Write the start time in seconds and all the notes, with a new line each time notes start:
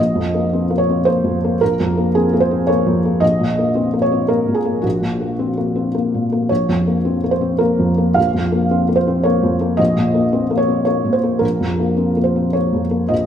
Already playing: A#1 D#5
0.15 F2
0.34 A#3
0.53 C4
0.70 A#3
0.78 C#5
0.89 C4
1.05 A#3 C5
1.24 F2
1.44 A#3
1.61 A#1 A#4
1.80 F2
1.97 A#3
2.15 C4 G#4
2.33 A#3
2.40 C5
2.51 C4
2.67 A#3 C#5
2.87 F2
3.05 A#3
3.20 A#1 D#5
3.40 A#2
3.58 A#3
3.75 C4
3.93 A#3
4.02 C#5
4.12 C4
4.28 A#3 A#4
4.48 A#2
4.54 G#4
4.65 A#3
4.82 A#1 F#4
5.02 A#2
5.21 A#3
5.39 C4
5.57 A#3
5.75 C4
5.94 A#3
6.14 A#2
6.32 A#3
6.49 A#1 C#5
6.69 F2
6.87 A#3
7.05 C4
7.24 A#3
7.31 C5
7.41 C4
7.58 A#3 A#4
7.79 F2
7.98 A#3
8.14 A#1 F5
8.34 F2
8.52 A#3
8.71 C4
8.89 A#3
8.96 C5
9.07 C4
9.23 A#3 C#5
9.43 F2
9.61 A#3
9.77 A#1 D#5
9.97 A#2
10.14 A#3
10.33 C4
10.51 A#3
10.57 C#5
10.68 C4
10.85 A#3 C#5
11.05 A#2
11.13 C5
11.23 A#3
11.39 A#1 A#4
11.60 F2
11.79 A#3
11.97 C4
12.17 A#3
12.24 C5
12.36 C4
12.53 A#3 C#5
12.73 F2
12.91 A#3
13.08 A#1 D#5